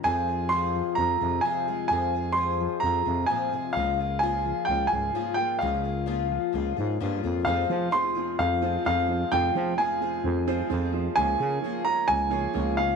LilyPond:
<<
  \new Staff \with { instrumentName = "Upright piano" } { \time 4/4 \key f \minor \tempo 4 = 130 aes''4 c'''4 bes''4 aes''4 | aes''4 c'''4 bes''4 aes''4 | f''4 aes''4 g''8 aes''4 g''8 | f''2.~ f''8 r8 |
f''4 c'''4 f''4 f''4 | g''4 aes''2 r4 | aes''4. bes''8 aes''4. f''8 | }
  \new Staff \with { instrumentName = "Upright piano" } { \time 4/4 \key f \minor r1 | r1 | r1 | r1 |
<f c' aes' c''>8 <f c' aes' c''>8 <f c' aes' c''>8 <f c' aes' c''>8 <f c' aes' c''>8 <f c' aes' c''>8 <f c' aes' c''>8 <f c' aes' c''>8 | <f c' aes' c''>8 <f c' aes' c''>8 <f c' aes' c''>8 <f c' aes' c''>8 <f c' aes' c''>8 <f c' aes' c''>8 <f c' aes' c''>8 <f c' aes' c''>8 | <f bes aes' des''>8 <f bes aes' des''>8 <f bes aes' des''>8 <f bes aes' des''>8 <f bes aes' des''>8 <f bes aes' des''>8 <f bes aes' des''>8 <f bes aes' des''>8 | }
  \new Staff \with { instrumentName = "Upright piano" } { \clef bass \time 4/4 \key f \minor r1 | r1 | r1 | r1 |
<f,, f,>1 | <f,, f,>1 | <des, des>1 | }
  \new Staff \with { instrumentName = "Twelve-string acoustic guitar" } { \time 4/4 \key f \minor <f, c f aes f' aes'>8 <f aes f' aes'>8 <f, c f aes f' aes'>4 <f aes f' aes'>8 <f aes f' aes'>8 <f, c f aes f' aes'>8 <f aes f' aes'>8 | <f, c f aes f' aes'>8 <f aes f' aes'>8 <f, c f aes f' aes'>4 <f aes f' aes'>8 <f aes f' aes'>8 <f, c f aes f' aes'>8 <f aes f' aes'>8 | <des f bes f' aes'>8 <bes f' aes'>8 <des f bes f' aes'>4 <f bes f' aes'>8 <bes f' aes'>8 <des f bes f' aes'>8 <bes f' aes'>8 | <des f bes f' aes'>8 <bes f' aes'>8 <des f bes f' aes'>4 <f bes f' aes'>8 <bes f' aes'>8 <des f bes f' aes'>8 <bes f' aes'>8 |
<f, c f aes f' aes'>8 <f aes f' aes'>8 <f aes f' aes'>8 <f aes f' aes'>4 <f aes f' aes'>8 <f aes f' aes'>4 | <f, c f aes f' aes'>8 <f aes f' aes'>8 <f aes f' aes'>8 <f aes f' aes'>4 <f aes f' aes'>8 <f aes f' aes'>4 | <des f bes f' aes'>8 <bes f' aes'>8 <f bes f' aes'>8 <bes f' aes'>4 <bes f' aes'>8 <f bes f' aes'>4 | }
  \new Staff \with { instrumentName = "Steel-string acoustic guitar" } { \clef bass \time 4/4 \key f \minor << { f'4 aes'4 c'4 aes'8 aes8~ | aes4 aes'4 c'2 | r4 f'4 des'4 f'8 bes8 | r4 f'4 des'4 f'8 bes8 |
r1 | r1 | r1 | } \\ { f,4. f4 c4. | f,4. f4 c8 bes,8 c8 | des4. f4 aes,4. | des4. f4 aes,4. |
r1 | r1 | r1 | } >> }
  \new Staff \with { instrumentName = "FM bass" } { \clef bass \time 4/4 \key f \minor f,2 f,8 f,8 r4 | f,2 f,8 f,8 r4 | des,2 des,8 des,8 r4 | des,2 des,8 aes,8 g,8 f,8 |
f,8 f8 r4 f,4 f,4 | f,8 f8 r4 f,4 f,4 | des,8 des8 r4 des,4 des,4 | }
>>